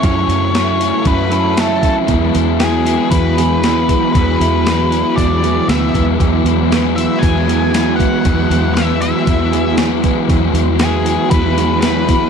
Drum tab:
HH |oooooooo|oooooooo|oooooooo|oooooooo|
SD |--o---o-|--o---o-|--o---o-|--o---o-|
BD |o---o--o|o---o--o|o---o--o|o---o--o|

HH |oooooooo|oooooooo|
SD |--o---o-|--o---o-|
BD |o---o--o|o---o--o|